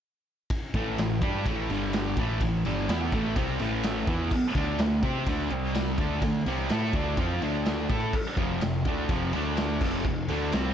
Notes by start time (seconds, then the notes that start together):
0.50 kick, ride
0.74 A1 A2 E3 A3, kick, ride
0.98 A1 A2 E3, snare, ride
1.22 G2 G3 D4 G4, kick, ride
1.45 A1 A2 E3 A3, kick, ride
1.70 G1 G2 D3 G3, ride
1.93 snare, ride
2.17 A1 A2 E3 A3, kick, ride
2.40 A1 A2 E3, kick, ride
2.65 G1 G2 D3 G3, ride
2.89 E2 E3 B3 E4, snare, ride
3.12 A1 A2 E3 A3, kick, ride
3.36 C2 C3 G3 C4, kick, ride
3.60 A1 A2 E3 A3, ride
3.83 snare, ride
4.07 E2 E3 B3 E4, kick, ride
4.31 kick, crash
4.55 D2 D3 A3 D4, kick, ride
4.78 D2 D3 A3, snare, ride
5.02 C3 C4 G4 C5, kick, ride
5.26 D2 D3 A3 D4, kick, ride
5.50 C2 C3 G3 C4, ride
5.74 snare, ride
5.98 D2 D3 A3 D4, kick, ride
6.22 D2 D3 A3, kick, ride
6.46 C2 C3 G3 C4, ride
6.69 A2 A3 E4 A4, snare, ride
6.93 D2 D3 A3 D4, kick, ride
7.17 F2 F3 C4 F4, kick, ride
7.41 D2 D3 A3 D4, ride
7.65 snare, ride
7.89 A2 A3 E4 A4, kick, ride
8.13 kick, crash
8.37 F1 F2 C3 F3, kick, ride
8.61 F1 F2 C3, snare, ride
8.85 D2 D3 A3 D4, kick, ride
9.09 F1 F2 C3 F3, kick, ride
9.33 D2 D3 A3 D4, ride
9.57 snare, ride
9.81 F1 F2 C3 F3, kick, crash
10.05 F1 F2 C3, kick
10.28 D2 D3 A3 D4, ride
10.52 C2 C3 G3 C4, snare, ride